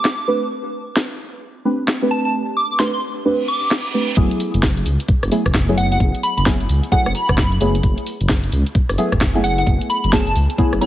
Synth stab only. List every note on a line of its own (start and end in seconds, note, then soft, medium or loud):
0.28 0.43 A3 medium
0.28 0.43 C4 medium
0.28 0.43 D4 medium
0.28 0.43 G4 medium
0.28 0.43 B4 medium
1.65 1.75 A3 medium
1.65 1.75 C4 medium
1.65 1.75 D4 medium
1.65 1.75 G4 medium
1.65 1.75 B4 medium
2.02 2.78 A3 medium
2.02 2.78 C4 medium
2.02 2.77 D4 medium
2.02 2.78 G4 medium
2.02 2.78 B4 loud
2.80 2.90 A3 medium
2.80 2.90 C4 medium
2.80 2.90 D4 medium
2.80 2.90 G4 medium
2.80 2.90 B4 loud
3.25 3.41 A3 medium
3.25 3.41 C4 medium
3.25 3.41 D4 medium
3.25 3.41 G4 medium
3.25 3.41 B4 loud
3.94 4.09 A3 medium
3.94 4.09 C4 medium
3.94 4.09 D4 medium
3.94 4.09 G4 medium
3.94 4.09 B4 medium
4.17 4.86 F#3 loud
4.17 4.86 A3 medium
4.17 4.86 B3 medium
4.17 4.86 E4 medium
4.17 4.86 G#4 loud
5.31 5.41 F#3 medium
5.31 5.41 A3 medium
5.31 5.41 B3 medium
5.31 5.41 E4 medium
5.31 5.41 G#4 loud
5.69 6.44 F#3 medium
5.69 6.44 A3 medium
5.69 6.44 B3 medium
5.69 6.44 E4 medium
5.69 6.44 G#4 loud
6.46 6.56 F#3 medium
6.46 6.56 A3 medium
6.46 6.56 B3 medium
6.46 6.56 E4 medium
6.46 6.56 G#4 loud
6.92 7.07 F#3 loud
6.92 7.07 A3 medium
6.92 7.07 B3 medium
6.92 7.07 E4 medium
6.92 7.07 G#4 loud
7.61 7.76 F#3 medium
7.61 7.76 A3 medium
7.61 7.76 B3 medium
7.61 7.76 E4 medium
7.61 7.76 G#4 medium
8.98 9.08 F#3 medium
8.98 9.08 A3 medium
8.98 9.08 B3 medium
8.98 9.08 E4 medium
8.98 9.08 G#4 loud
9.35 10.10 F#3 medium
9.35 10.10 A3 medium
9.35 10.10 B3 medium
9.35 10.10 E4 medium
9.35 10.10 G#4 loud
10.13 10.22 F#3 medium
10.13 10.22 A3 medium
10.13 10.22 B3 medium
10.13 10.22 E4 medium
10.13 10.22 G#4 loud
10.58 10.74 F#3 loud
10.58 10.74 A3 medium
10.58 10.74 B3 medium
10.58 10.74 E4 medium
10.58 10.74 G#4 loud
10.81 10.86 F#3 medium
10.81 10.86 A3 medium
10.81 10.86 B3 medium
10.81 10.86 E4 medium
10.81 10.86 G#4 medium